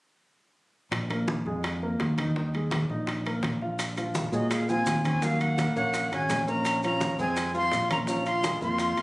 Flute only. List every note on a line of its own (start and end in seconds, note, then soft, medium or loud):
4.34 4.50 D#5 medium
4.51 4.71 F5 medium
4.69 5.05 G#5 medium
5.06 5.25 G#5 medium
5.24 5.43 F5 medium
5.41 5.76 F#5 medium
5.77 6.10 F#5 medium
6.13 6.46 G#5 medium
6.48 6.81 A#5 loud
6.85 7.17 A#5 loud
7.21 7.53 G#5 medium
7.57 7.89 C6 loud
7.92 7.98 A#5 loud
8.08 8.25 A#5 loud
8.27 8.60 C6 loud
8.63 9.02 C6 medium